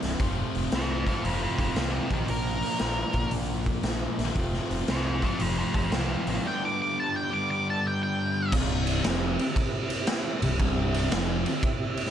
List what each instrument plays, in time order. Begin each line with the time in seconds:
Already playing: distorted electric guitar C2 G2 C3 G3 C4 E4
0.02 picked electric bass C1, snare, open hi-hat
0.20 picked electric bass F1, distorted electric guitar F2 C3 F3 A3 C4 F4, kick, open hi-hat
0.55 picked electric bass F1, open hi-hat
0.72 picked electric bass C2, lead electric guitar C5 D#5, snare, open hi-hat
0.92 lead electric guitar C5 D#5
1.06 distorted electric guitar F2 C3 F3 A3 C4 F4, lead electric guitar C5 D#5, kick, open hi-hat
1.24 picked electric bass F1, lead electric guitar A4 C5, open hi-hat
1.43 lead electric guitar A4 C5
1.58 picked electric bass F1, lead electric guitar A4 C5, kick, open hi-hat
1.76 picked electric bass C2, lead electric guitar D#4 G4, snare, open hi-hat
1.94 lead electric guitar D#4 G4
2.10 picked electric bass A#1, distorted electric guitar A#2 F3 A#3 D4 F4 A#4, lead electric guitar A#3 G4, kick, open hi-hat
2.28 picked electric bass A#1, lead electric guitar A#4, open hi-hat
2.62 open hi-hat
2.79 picked electric bass A#1, distorted electric guitar A#2 F3 A#3 D4 F4 A#4, snare, open hi-hat
3.13 picked electric bass A#1, kick, open hi-hat
3.31 picked electric bass A#1, open hi-hat
3.66 kick, open hi-hat
3.83 picked electric bass A#1, snare, open hi-hat
4.18 picked electric bass A#1, snare, open hi-hat
4.35 picked electric bass F1, distorted electric guitar F2 C3 F3 A3 C4 F4, kick, open hi-hat
4.54 snare
4.71 picked electric bass F1, open hi-hat
4.88 picked electric bass C2, lead electric guitar C5 D#5, snare, open hi-hat
5.07 lead electric guitar C5 D#5
5.22 distorted electric guitar F2 C3 F3 A3 C4 F4, lead electric guitar C5 D#5, kick, open hi-hat
5.40 picked electric bass F1, lead electric guitar A4 C5, open hi-hat
5.58 lead electric guitar A4 C5
5.74 picked electric bass F1, lead electric guitar A4 C5, kick, open hi-hat
5.92 picked electric bass C2, lead electric guitar D#4 G4, snare, open hi-hat
6.12 lead electric guitar D#4 G4
6.27 picked electric bass A1, lead electric guitar D#4 G4, open hi-hat
6.43 distorted electric guitar G2 D3 G3 B3 D4 G4, lead electric guitar G5
6.65 lead electric guitar D6
6.82 lead electric guitar D6
7.00 lead electric guitar A5
7.16 lead electric guitar G5
7.30 distorted electric guitar G2 D3 G3 B3 D4 G4, lead electric guitar D6
7.51 lead electric guitar D6
7.70 lead electric guitar A5
7.87 lead electric guitar G5
8.03 lead electric guitar G5
8.52 picked electric bass C1, distorted electric guitar C2, tonewheel organ C#4 F4 G#4 F5, kick, crash
8.71 tonewheel organ C4 E4 G4 E5
8.87 ride
9.04 picked electric bass F1, distorted electric guitar F2, snare, ride
9.39 ride
9.56 kick, ride
9.90 ride
10.07 snare, ride
10.42 picked electric bass C1, distorted electric guitar C2, ride
10.59 picked electric bass C1, distorted electric guitar C2, kick, ride
10.94 ride
11.11 picked electric bass F1, distorted electric guitar F2, snare, ride
11.46 ride
11.63 kick, ride
11.97 ride
12.06 snare